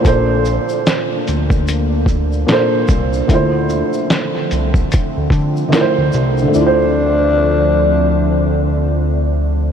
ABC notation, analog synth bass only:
X:1
M:4/4
L:1/16
Q:"Swing 16ths" 1/4=74
K:Dm
V:1 name="Analog synth bass" clef=bass
B,,,3 z3 D,,6 z2 C,,2 | D,,3 z3 C,,2 z D,, D,2 z D,, C,,2 | D,,16 |]